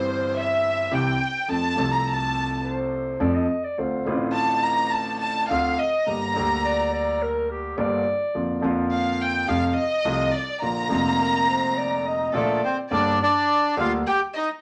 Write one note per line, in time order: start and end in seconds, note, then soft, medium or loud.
0.00 0.84 G1 medium
0.00 0.84 G2 medium
0.00 0.83 E3 medium
0.00 0.83 G3 medium
0.00 0.84 C4 medium
0.00 0.85 G4 medium
0.00 0.35 C5 medium
0.37 0.93 E5 medium
0.91 1.15 C2 medium
0.91 1.15 C3 medium
0.91 1.15 E3 medium
0.91 1.15 G3 medium
0.91 1.15 C4 medium
0.91 1.15 G4 medium
0.91 1.50 G5 medium
1.48 1.72 F2 medium
1.48 1.72 F3 medium
1.48 1.72 A3 soft
1.48 1.72 C4 soft
1.48 1.73 A4 soft
1.48 1.89 A5 medium
1.75 3.14 C2 medium
1.75 3.13 C3 medium
1.75 3.13 F3 medium
1.75 3.13 A3 medium
1.75 3.14 C4 medium
1.75 3.15 A4 medium
1.92 2.06 A#5 medium
2.07 2.64 A5 medium
2.63 3.22 C5 medium
3.20 3.45 F2 medium
3.20 3.45 F3 medium
3.20 3.45 A3 medium
3.20 3.45 C4 medium
3.20 3.45 A4 medium
3.20 3.36 D5 medium
3.34 3.66 D#5 medium
3.64 3.80 D5 medium
3.78 4.02 D2 medium
3.78 4.03 D2 medium
3.78 4.02 D3 medium
3.78 4.03 A3 soft
3.78 4.03 C4 soft
3.78 4.03 F4 soft
3.78 4.22 C5 medium
4.05 5.43 A1 medium
4.05 5.43 A2 medium
4.05 5.42 D3 medium
4.05 5.43 A3 medium
4.05 5.43 C4 medium
4.05 5.44 F4 medium
4.35 4.62 A5 medium
4.65 4.93 A#5 medium
4.92 5.19 A5 medium
5.20 5.48 A5 medium
5.49 5.74 D2 medium
5.49 5.74 D3 medium
5.49 5.74 A3 medium
5.49 5.74 C4 medium
5.49 5.74 F4 medium
5.49 5.76 F5 medium
5.79 6.08 D#5 medium
6.06 6.31 G1 soft
6.06 6.32 G1 medium
6.06 6.31 G2 medium
6.06 6.31 D3 soft
6.06 6.31 G3 soft
6.06 6.31 A#3 soft
6.06 6.32 G4 soft
6.06 7.21 A#5 medium
6.36 7.71 D2 medium
6.36 7.71 D3 medium
6.36 7.71 G3 medium
6.36 7.71 A#3 medium
6.36 7.72 G4 medium
6.64 6.91 D5 loud
6.93 7.24 D5 medium
7.23 7.50 A#4 medium
7.51 7.80 G4 medium
7.78 8.02 G1 medium
7.78 8.02 G2 medium
7.78 8.02 D3 medium
7.78 8.02 G3 medium
7.78 8.02 A#3 medium
7.78 8.02 G4 medium
7.78 8.78 D5 medium
8.35 8.59 F2 medium
8.35 8.59 D3 soft
8.35 8.59 F3 medium
8.35 8.59 A#3 soft
8.35 8.59 F4 medium
8.61 9.44 F2 medium
8.61 9.45 F2 medium
8.61 9.43 D3 medium
8.61 9.44 F3 medium
8.61 9.44 A#3 medium
8.61 9.45 F4 medium
8.92 9.18 F5 medium
9.20 9.49 G5 medium
9.48 9.72 F2 medium
9.48 9.73 F2 medium
9.48 9.72 C3 medium
9.48 9.72 F3 medium
9.48 9.72 A3 medium
9.48 9.72 F4 medium
9.48 9.68 F5 medium
9.70 9.77 F5 medium
9.75 10.33 D#5 loud
10.05 10.29 C2 medium
10.05 10.29 C3 medium
10.05 10.29 F3 medium
10.05 10.29 A3 medium
10.05 10.29 F4 medium
10.33 10.62 D5 medium
10.61 10.86 A#1 medium
10.61 10.87 A#2 soft
10.61 10.86 D3 soft
10.61 10.86 F3 soft
10.61 10.86 A#3 soft
10.61 10.87 F4 medium
10.61 12.30 A#5 loud
10.88 12.27 F1 medium
10.88 12.27 F2 medium
10.88 12.26 D3 medium
10.88 12.27 F3 medium
10.88 12.27 A#3 medium
10.88 12.28 F4 medium
11.19 11.50 A#4 medium
11.49 11.79 C5 medium
11.77 12.05 D5 medium
12.06 12.33 D#5 medium
12.33 12.58 A#1 medium
12.33 12.59 A#1 medium
12.33 12.58 A#2 medium
12.33 12.58 D3 medium
12.33 12.58 F3 medium
12.33 12.62 A3 medium
12.33 12.58 A#3 medium
12.33 12.59 F4 medium
12.33 12.61 A4 medium
12.33 12.88 D5 medium
12.63 12.77 C4 medium
12.63 12.76 C5 medium
12.91 13.16 G1 medium
12.91 13.16 G2 medium
12.91 13.16 D3 medium
12.91 13.16 G3 medium
12.91 13.16 A#3 medium
12.91 13.19 D4 medium
12.91 13.16 G4 medium
12.91 13.18 D5 medium
13.19 13.75 D4 loud
13.19 13.73 D5 medium
13.76 14.02 D2 medium
13.76 14.01 D3 medium
13.76 14.01 G3 medium
13.76 14.01 A#3 medium
13.76 14.02 G4 medium
13.76 13.89 F5 medium
13.80 13.92 F4 medium
14.07 14.20 G4 loud
14.07 14.20 G5 medium
14.35 14.49 D#4 medium
14.35 14.47 D#5 medium